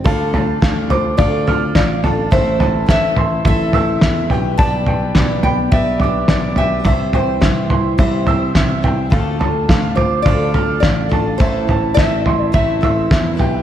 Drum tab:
SD |--o---o-|--o---o-|--o---o-|--o---o-|
FT |oooooooo|oooooooo|oooooooo|oooooooo|
BD |o-o-o-o-|o-o-o-o-|o-o-o-o-|o-o-o-o-|

SD |--o---o-|--o---o-|
FT |oooooooo|oooooooo|
BD |o-o-o-o-|o-o-o-o-|